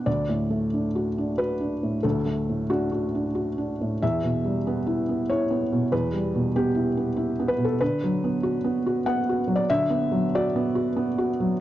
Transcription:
0.06 D2 D5
0.29 A2
0.50 A3
0.74 D4
0.95 F#4
1.18 D4
1.38 F#4 B4
1.60 D4
1.83 A2
2.03 D2 A4
2.25 A3
2.49 A2
2.70 D4 F#4
2.92 F#4
3.15 D4
3.35 F#4
3.58 D4
3.81 A2
4.02 E2 E5
4.23 B2
4.44 G3
4.67 B3
4.87 E4
5.09 B3
5.30 E4 C#5
5.51 B3
5.72 B2
5.92 E2 B4
6.13 G3
6.35 B2
6.56 B3 G4
6.75 E4
6.97 B3
7.17 E4
7.40 B3
7.48 B4
7.58 B2
7.65 A4
7.81 D3 B4
8.04 F#3
8.24 B3
8.43 F#4
8.64 B3
8.86 F#4
9.06 B3 F#5
9.29 F#4
9.48 F#3
9.56 D5
9.70 D3 E5
9.90 B3
10.12 F#3
10.35 F#4 D5
10.56 B3
10.75 F#4
10.96 B3
11.18 F#4
11.40 F#3

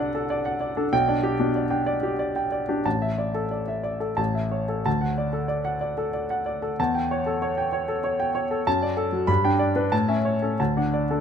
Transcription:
Already playing: C2 D4 A4 F#5 A5
0.00 D5
0.15 A4
0.30 D5
0.45 F#5
0.61 D5
0.77 D4 A4
0.93 B1 G5
1.08 D4 D5
1.23 G4
1.39 B2 D4
1.56 D5
1.70 D4 G5
1.86 D5
2.03 G4
2.19 D5
2.36 G5
2.52 D5
2.69 D4 G4
2.85 A1 A5
3.02 E5
3.18 D5
3.34 A4
3.51 D5
3.68 E5
3.83 D5
4.00 A4
4.17 A1 A5
4.35 E5
4.51 C#5
4.68 A4
4.86 D2 A5
5.01 F#5
5.18 D5
5.33 A4
5.48 D5
5.65 F#5
5.81 D5
5.98 A4
6.13 D5
6.30 F#5
6.46 D5
6.62 A4
6.79 E2 A5
6.95 G5
7.11 C#5
7.26 A4
7.42 C#5
7.58 G5
7.73 C#5
7.88 A4
8.04 C#5
8.20 G5
8.35 C#5
8.51 A4
8.67 F#2 A5
8.83 D5
8.97 A4
9.12 F#3
9.27 G2 B5
9.44 D4 G5
9.59 D5
9.76 D4 B4
9.92 A2 A5
10.08 C#4 E5
10.25 C#5
10.42 C#4 A4
10.60 D2 A5
10.77 D4 F#5
10.93 D5
11.11 D4 A4

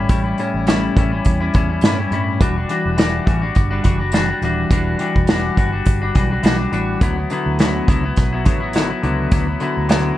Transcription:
0.09 A1 A2 G3 C#4 E4, kick, closed hi-hat
0.23 G3 C#4 E4
0.38 A2 G3 C#4 E4, closed hi-hat
0.54 A1
0.67 A2 G3 C#4 E4, snare, closed hi-hat
0.96 A1 A2 G3 C#4 E4, kick, closed hi-hat
1.11 G3 C#4 E4
1.25 E2, kick, closed hi-hat
1.40 G3 C#4 E4
1.54 E2 A2 G3 C#4 E4, kick, closed hi-hat
1.69 G3 C#4 E4
1.81 G2 A2 G3 C#4, snare, closed hi-hat
1.86 E4
1.98 G3 C#4 E4
2.11 G2 A2 G3 C#4 E4, closed hi-hat
2.41 E1 E3 G3 D4 F#4, kick, closed hi-hat
2.56 G3 D4 F#4
2.69 E3 G3 D4 F#4, closed hi-hat
2.85 E1
2.97 E3 G3 D4 F#4, snare, closed hi-hat
3.26 A1 E3 G3 D4 F#4, kick, closed hi-hat
3.42 G3 D4 F#4
3.55 G1, kick, closed hi-hat
3.71 G3 D4 F#4
3.84 F#1 E3 G3 D4 F#4, kick, closed hi-hat
4.00 G3 D4 F#4
4.12 E3 G3 D4 F#4, snare, closed hi-hat
4.28 G3 D4 F#4
4.42 D#1 E3 G3 D4 F#4, closed hi-hat
4.70 E1 E3 G3 D4 F#4, kick, closed hi-hat
4.99 E3 G3 D4 F#4, closed hi-hat
5.16 E1, kick
5.27 E3 G3 D4 F#4, snare, closed hi-hat
5.57 G1 E3 G3 D4 F#4, kick, closed hi-hat
5.72 G3 D4 F#4
5.85 G1, kick, closed hi-hat
6.02 G3 D4 F#4
6.15 B1 E3 G3 D4 F#4, kick, closed hi-hat
6.31 G3 D4 F#4
6.43 B1 E3 G3 D4 F#4, snare, closed hi-hat
6.58 G3 D4 F#4
6.71 A1 E3 G3 D4 F#4, closed hi-hat
7.01 D2 D3 F#3 B3 E4, kick, closed hi-hat
7.17 F#3 B3 E4
7.30 D3 F#3 B3 E4, closed hi-hat
7.46 D2
7.59 D3 F#3 B3 E4, snare, closed hi-hat
7.87 C#2 D3 F#3 B3 E4, kick, closed hi-hat
8.04 F#3 B3 E4
8.16 B1, kick, snare, closed hi-hat
8.33 F#3 B3 E4
8.45 A1 D3 F#3 B3 E4, kick, closed hi-hat
8.60 F#3 B3 E4
8.73 D3 F#3 B3 E4, snare, closed hi-hat
8.90 F#3 B3 E4
9.03 C#2 D3 F#3 B3 E4, closed hi-hat
9.31 D2 D3 F#3 B3 E4, kick, closed hi-hat
9.47 F#3 B3 E4
9.60 D3 F#3 B3 E4, closed hi-hat
9.77 D2
9.89 D3 F#3 B3 E4, snare, closed hi-hat

